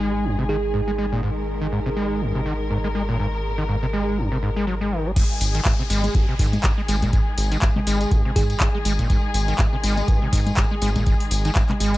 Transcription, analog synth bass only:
0.00 5.14 G#1 medium
5.41 5.60 G#1 loud
5.90 6.09 G#1 medium
6.39 6.58 G#2 loud
6.88 7.07 G#1 loud
7.38 7.56 G#1 loud
7.87 8.06 G#1 medium
8.36 8.55 G#2 medium
8.85 9.04 G#1 loud
9.34 9.53 G#1 loud
9.84 10.02 G#1 medium
10.33 10.51 G#2 loud
10.82 11.01 G#1 loud
11.31 11.50 G#1 loud
11.80 11.98 G#1 medium

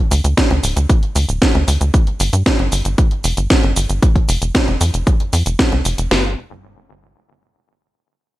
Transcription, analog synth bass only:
0.11 0.21 D2 medium
0.24 0.34 D2 medium
0.50 0.61 D2 medium
0.63 0.74 D1 medium
0.76 0.87 D2 medium
1.16 1.26 D2 medium
1.29 1.39 D1 medium
1.55 1.65 D2 medium
1.68 1.78 D2 loud
1.81 1.91 D2 medium
2.20 2.30 G1 medium
2.33 2.43 G2 medium
2.59 2.69 G1 medium
2.72 2.82 G1 loud
2.85 2.95 G1 medium
3.24 3.34 F1 medium
3.37 3.47 G1 medium
3.63 3.74 G1 medium
3.76 3.87 G1 medium
3.89 4.00 G1 medium
4.29 4.39 F1 medium
4.42 4.52 F1 medium
4.68 4.78 F1 medium
4.81 4.91 F2 loud
4.94 5.04 F1 medium
5.33 5.43 F2 medium
5.46 5.56 F1 medium
5.72 5.82 C2 medium
5.85 5.95 F1 medium
5.98 6.08 F1 medium
6.11 6.36 G1 medium

